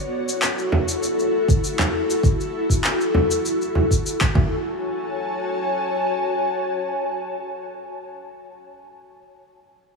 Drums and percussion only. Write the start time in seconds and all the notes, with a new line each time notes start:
0.29 shaker
0.42 clap, shaker
0.58 shaker
0.72 frame drum
0.88 shaker
1.03 shaker
1.19 shaker
1.48 kick, shaker
1.64 shaker
1.79 clap, frame drum, shaker
2.10 shaker
2.23 kick, shaker
2.41 shaker
2.70 kick, shaker
2.84 clap, shaker
3.01 shaker
3.14 frame drum
3.31 shaker
3.45 shaker
3.61 shaker
3.75 frame drum
3.91 kick, shaker
4.06 shaker
4.21 kick, clap, shaker
4.35 kick, frame drum